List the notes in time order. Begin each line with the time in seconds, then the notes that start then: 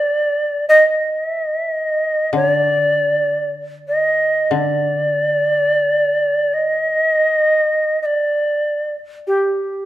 Already playing: C3 D5
0.69 D#5
1.26 E5
1.42 D#5
1.59 E5
1.74 D#5
2.33 D3 C#5
2.50 D5
3.88 D#5
4.51 D3 D5
6.54 D#5
8.02 D5 D#5
9.27 G4